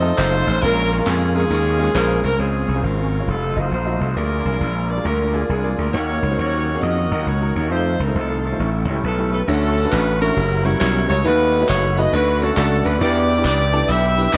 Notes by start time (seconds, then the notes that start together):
Already playing: F2 D#4 A4 C5 D#5 F5 A5 D#6
0.02 A3 C4 D#4 F4 A4, tambourine
0.17 F#1 A3 C4 D#4 F4 A4 C5 D#5, clap, tambourine
0.47 A1, tambourine
0.61 A#1 A#2 G#3 A#3 C#4 F4 A#4 F5 G#5 C#6, tambourine
0.91 A#4, tambourine
0.98 G#3 A#3 C#4 F4 A#4
1.06 F2 G#4, clap, tambourine
1.35 G#3 A#3 C#4 F4 G#4 A#4, tambourine
1.50 D#2, tambourine
1.78 G#3 A#3 C#4 F4 G#4, tambourine
1.95 A#1 G#3 A#3 C#4 F4 A#4 C5, clap, tambourine
2.24 C2 A#4, tambourine
2.38 C#2 C#3 F3 G#3 C4 C#4 F4 G#4 C5 F5 G#5 C#6
2.68 C2
2.75 G#3 C#4 F4 C5
2.83 G#1 F4 A#4
3.20 G#3 C#4 F4 C#5
3.27 F1 F#3 A3 C4 D#4 A4 F#5 D#6
3.56 F#1 A3 F4 F#4 C5 D#5
3.71 A#1 C5
3.85 A3 F4 F#4 D#5
4.01 C2 C5
4.15 D2 D3 G#3 A#3 D4 F4 G#4 A#4 D5 G#5 D6
4.45 C2
4.52 A#3 F4 G#4 D5
4.60 A#1
4.90 D5
4.96 A#3 F4 G#4 A#4
5.04 D2 D3 F4 A#4 F5
5.33 A#3 F4 G#4 D5
5.49 C2 G#4
5.64 A#3 F4 G#4 D5
5.78 D2 A#4
5.93 D#2 D#3 F#3 A#3 C#4 D#4 F#4 A#4 C#5 D#5 F#5 C#6
6.23 C#2
6.30 A#3 D#4 F#4 C5
6.38 D#2 F#4 A#4 C#5
6.74 A#3 D#4 F#4 G#4
6.83 F2 F#4 A#4 D#5
7.11 D#2 A#3 D#4 F#4 A#4
7.26 C#2 C#5
7.41 A#3 D#4 F#4 A#4
7.56 D#2 C#5
7.71 F2 D#3 F3 A3 C4 D#4 F4 A4 C5 F5 C6
8.00 C#2 A#4
8.08 A3 D#4 F4 C5
8.15 C2 A4
8.45 C#4 E4 A4
8.52 A3 D#4 F4 C5
8.59 A1 A2 E3 G3 C#4 A4 E5 G5 C#6
8.88 C#2 A3 E4 G4 C#5
9.04 B1 A4 B4
9.18 A3 E4 G4 A4
9.33 A4 B4
9.47 D2 D3 A3 C#4 D4 F#4 A4 C#5 F#5 C#6, tambourine
9.78 tambourine
9.84 A3 C#4 D4 F#4 B4
9.92 A1 B4, clap, tambourine
10.21 A3 C#4 D4 E4 F#4 A#4 C#5, tambourine
10.36 F#1 G4 E5 A#5, tambourine
10.64 G3 C#4 E4 F#4 A#4 C#5, tambourine
10.80 B1 G3 C#4 E4 F#4 A#4 C#5, clap, tambourine
11.09 C#2 C#5, tambourine
11.24 D#2 D#3 A3 B3 D#4 F#4 A4 B4 D#5 F#5 B5, tambourine
11.54 tambourine
11.61 A3 B3 D#4 F#4 C#5
11.68 F#1 C#5, clap, tambourine
11.97 A3 B3 D#4 F#4 B4 D#5, tambourine
12.13 D2 D3 F#4 B4 D5 C#6, tambourine
12.42 A3 C#4 D4 F#4 A4 C#5, tambourine
12.57 C#2 A3 C#4 D4 F#4 A4 D5, clap, tambourine
12.85 D2 B4, tambourine
13.01 E2 E3 B3 D4 E4 G4 B4 D5 E5 G5 D6, tambourine
13.30 tambourine
13.38 B3 D4 E4 G4 D5
13.45 C#2 G4 B4 D5, clap, tambourine
13.73 B3 D4 E4 G4 A4, tambourine
13.89 B1 G4 B4 E5, tambourine
14.17 B3 D4 E4 G4 B4, tambourine
14.33 D2 B3 D4 E4 G4 B4 D5, clap, tambourine